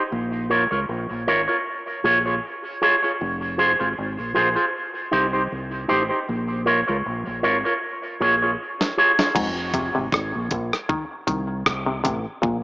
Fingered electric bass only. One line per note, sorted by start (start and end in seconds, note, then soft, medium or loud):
0.12 0.65 A#1 loud
0.71 0.86 C#2 medium
0.89 1.07 A#1 medium
1.10 1.25 A#1 medium
1.28 1.46 G#1 medium
2.04 2.38 A#1 loud
3.21 3.74 F1 loud
3.81 3.95 G#1 medium
3.98 4.16 G#1 medium
4.19 4.34 A#1 medium
4.36 4.55 A#1 medium
5.13 5.47 C2 medium
5.52 5.86 C2 medium
5.91 6.09 A1 medium
6.29 6.82 A#1 loud
6.89 7.03 C#2 medium
7.06 7.24 A#1 medium
7.27 7.42 A#1 medium
7.44 7.62 G#1 medium
8.21 8.55 A#1 loud
9.36 9.89 F1 loud
9.97 10.12 G#1 medium
10.13 10.32 G#1 loud
10.35 10.50 A#1 medium
10.52 10.70 A#1 loud
11.28 11.62 C2 loud
11.67 12.01 C2 medium
12.06 12.24 A1 medium
12.44 12.63 A#1 loud